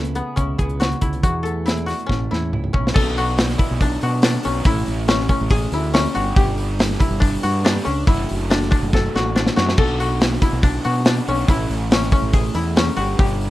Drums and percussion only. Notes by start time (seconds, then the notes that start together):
0.05 closed hi-hat
0.15 closed hi-hat
0.37 kick, closed hi-hat
0.59 kick, closed hi-hat
0.69 closed hi-hat
0.81 snare, closed hi-hat
0.92 closed hi-hat
1.01 kick, closed hi-hat
1.13 closed hi-hat
1.23 kick, closed hi-hat
1.45 closed hi-hat
1.67 snare, closed hi-hat
1.77 closed hi-hat
1.88 snare, open hi-hat
1.99 closed hi-hat
2.09 kick, snare
2.33 snare
2.53 mid tom
2.64 mid tom
2.74 kick
2.87 snare
2.96 kick, crash
3.18 open hi-hat
3.38 snare, open hi-hat
3.50 snare
3.59 kick, open hi-hat
3.80 kick, open hi-hat
4.01 open hi-hat
4.22 snare, open hi-hat
4.43 open hi-hat
4.64 kick, open hi-hat
4.86 open hi-hat
5.08 snare, open hi-hat
5.20 snare
5.29 kick, open hi-hat
5.50 kick, open hi-hat
5.72 open hi-hat
5.94 snare, open hi-hat
6.15 open hi-hat
6.36 kick, open hi-hat
6.58 open hi-hat
6.79 snare, open hi-hat
6.92 snare
7.00 kick, open hi-hat
7.22 kick, open hi-hat
7.43 open hi-hat
7.65 snare, open hi-hat
7.86 open hi-hat
8.07 kick, open hi-hat
8.29 open hi-hat
8.50 snare, open hi-hat
8.63 snare
8.72 kick, open hi-hat
8.93 kick, snare
9.16 snare
9.36 snare
9.46 snare
9.57 snare
9.69 snare
9.77 kick, crash
10.00 open hi-hat
10.21 snare, open hi-hat
10.33 snare
10.42 kick, open hi-hat
10.63 kick, open hi-hat
10.84 open hi-hat
11.05 snare, open hi-hat
11.28 open hi-hat
11.48 kick, open hi-hat
11.70 open hi-hat
11.91 snare, open hi-hat
12.03 snare
12.11 kick, open hi-hat
12.33 kick, open hi-hat
12.54 open hi-hat
12.76 snare, open hi-hat
12.98 open hi-hat
13.19 kick, open hi-hat
13.41 open hi-hat